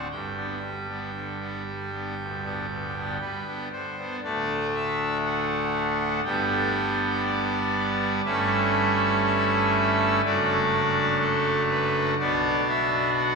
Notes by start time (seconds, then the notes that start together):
0.11 G1 G2 G5
0.37 B3 D4
0.62 G3
0.88 B3 D4
1.14 D3
1.40 B3 D4
1.66 G3
1.92 B3 D4
2.18 D1 D2
2.44 B3 D4
2.70 D3
2.95 B3 D4
3.21 G3 B4
3.46 B3 D4
3.72 D3 C5
3.98 B3 D4
4.24 D1 D2 A3 D4 D5
4.74 E5
5.24 F#5
6.24 G1 G2 B3 D4 G5
7.25 D5
8.25 G1 G2 A3 C#4 E4 E5
9.26 E5
10.25 F#1 F#2 A3 D4 F#4 D5
11.21 A4
11.70 B4
12.19 B1 B2 B3 D4 F#4 D5
12.69 E5
13.17 F#5